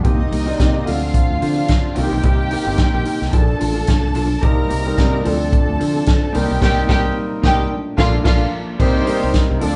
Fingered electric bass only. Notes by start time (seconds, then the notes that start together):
0.05 C2
0.32 C2
0.60 C3
0.88 D2
1.30 D2
1.43 D3
1.70 D3
1.98 C2
2.12 B1
2.24 C2
2.67 G1
2.94 A#1
3.22 C2
3.34 A#1
3.61 A1
3.89 C2
4.15 B1
4.43 C2
4.71 C2
4.98 C3
5.26 D2
5.69 D2
5.81 D3
6.08 D3
6.35 C2
6.51 B1
6.62 C2
6.90 C2
7.44 C2
7.98 A#1
8.26 A#1
8.80 C2
9.24 C2
9.51 C2
9.63 D2